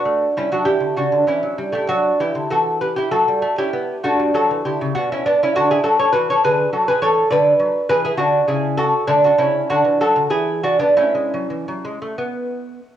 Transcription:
X:1
M:3/4
L:1/16
Q:1/4=98
K:Bm
V:1 name="Lute"
[DF]2 [CE] [DF] [EG]2 [DF]2 [CE]3 [EG] | [DF]2 [EG]2 [FA]2 [GB] [EG] [FA]3 [EG]- | [EG]2 [DF]2 [FA]2 [EG]2 [DF] [CE] [B,D] [CE] | [K:A] [DF] [EG] [FA] [Ac] [FB] [Ac] [GB]2 [FA] [GB] [Ac]2 |
[Bd]4 [GB] [EG] [DF]2 [EG]2 [FA]2 | [A,D] [DF] [CE]2 [DF]2 [FA]2 [EG]2 [DF] [B,D] | [CE]8- [CE]2 z2 |]
V:2 name="Lute" clef=bass
A,2 G, F, E, D, C, D, E, F, G, A, | F,2 E, D, E,4 F, G, A, C | B,2 A, G, F, E, D, C, B,,4 | [K:A] D,2 F,2 E,2 D,2 F,2 E,2 |
D,2 F,2 E,2 D,2 C,4 | D,2 C,2 D, E, F, D, E,4 | A, G, F, E, F, G, A, B,4- B, |]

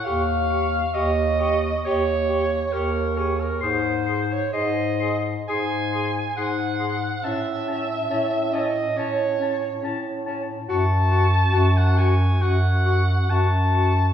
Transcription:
X:1
M:4/4
L:1/16
Q:1/4=68
K:G#phr
V:1 name="Clarinet"
c'2 c'2 c'2 c'2 c'2 c'2 c'2 c'2 | ^b2 b2 b2 b2 b2 b2 b2 b2 | a2 a2 a2 a2 a2 a2 a2 a2 | c'2 c'2 c'2 c'2 c'2 c'2 c'2 c'2 |]
V:2 name="Alto saxophone"
^e4 d4 c4 ^A2 G A | ^B3 c d3 z g4 f4 | e6 d2 c4 z4 | a4- a f g2 f4 a4 |]
V:3 name="Tenor saxophone"
=G2 G2 G2 G2 G2 G2 G2 G2 | G2 G2 G2 G2 G2 G2 G2 G2 | C2 C2 C2 C2 C2 C2 C2 C2 | F2 F2 F2 F2 F2 F2 F2 F2 |]
V:4 name="Bass clarinet" clef=bass
D,,4 D,,4 D,,4 D,,4 | G,,4 G,,4 G,,4 G,,4 | A,,4 A,,4 A,,4 A,,4 | F,,4 F,,4 F,,4 F,,4 |]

